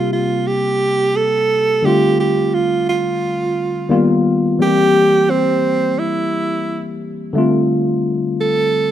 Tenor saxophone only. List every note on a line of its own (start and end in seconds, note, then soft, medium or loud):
0.00 0.12 F4 medium
0.13 0.48 F4 medium
0.47 1.18 G4 loud
1.16 1.87 A4 loud
1.85 2.19 G4 loud
2.20 2.56 G4 medium
2.54 2.88 F4 medium
2.89 4.22 F4 medium
4.62 5.31 G4 loud
5.30 6.00 C4 medium
5.99 7.02 E4 medium
8.41 8.91 A4 loud